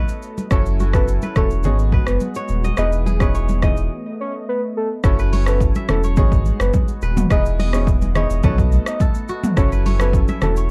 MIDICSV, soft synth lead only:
0, 0, Header, 1, 2, 480
1, 0, Start_track
1, 0, Tempo, 566038
1, 433, Time_signature, 4, 2, 24, 8
1, 9079, End_track
2, 0, Start_track
2, 0, Title_t, "Soft synth lead"
2, 0, Program_c, 0, 80
2, 439, Note_on_c, 0, 73, 106
2, 543, Note_off_c, 0, 73, 0
2, 804, Note_on_c, 0, 71, 81
2, 899, Note_off_c, 0, 71, 0
2, 1160, Note_on_c, 0, 69, 75
2, 1263, Note_off_c, 0, 69, 0
2, 1400, Note_on_c, 0, 73, 81
2, 1503, Note_off_c, 0, 73, 0
2, 1764, Note_on_c, 0, 71, 79
2, 1860, Note_off_c, 0, 71, 0
2, 2359, Note_on_c, 0, 75, 117
2, 2463, Note_off_c, 0, 75, 0
2, 2727, Note_on_c, 0, 73, 84
2, 2821, Note_off_c, 0, 73, 0
2, 3082, Note_on_c, 0, 75, 71
2, 3184, Note_off_c, 0, 75, 0
2, 3567, Note_on_c, 0, 73, 77
2, 3667, Note_off_c, 0, 73, 0
2, 3806, Note_on_c, 0, 71, 79
2, 3906, Note_off_c, 0, 71, 0
2, 4044, Note_on_c, 0, 69, 83
2, 4146, Note_off_c, 0, 69, 0
2, 4285, Note_on_c, 0, 73, 108
2, 4386, Note_off_c, 0, 73, 0
2, 4648, Note_on_c, 0, 71, 83
2, 4742, Note_off_c, 0, 71, 0
2, 5002, Note_on_c, 0, 69, 87
2, 5104, Note_off_c, 0, 69, 0
2, 5247, Note_on_c, 0, 73, 90
2, 5347, Note_off_c, 0, 73, 0
2, 5608, Note_on_c, 0, 71, 82
2, 5702, Note_off_c, 0, 71, 0
2, 6204, Note_on_c, 0, 75, 108
2, 6306, Note_off_c, 0, 75, 0
2, 6567, Note_on_c, 0, 73, 74
2, 6661, Note_off_c, 0, 73, 0
2, 6921, Note_on_c, 0, 75, 81
2, 7024, Note_off_c, 0, 75, 0
2, 7163, Note_on_c, 0, 73, 92
2, 7265, Note_off_c, 0, 73, 0
2, 7527, Note_on_c, 0, 75, 80
2, 7621, Note_off_c, 0, 75, 0
2, 8123, Note_on_c, 0, 73, 107
2, 8225, Note_off_c, 0, 73, 0
2, 8486, Note_on_c, 0, 71, 82
2, 8580, Note_off_c, 0, 71, 0
2, 8841, Note_on_c, 0, 69, 78
2, 8944, Note_off_c, 0, 69, 0
2, 9079, End_track
0, 0, End_of_file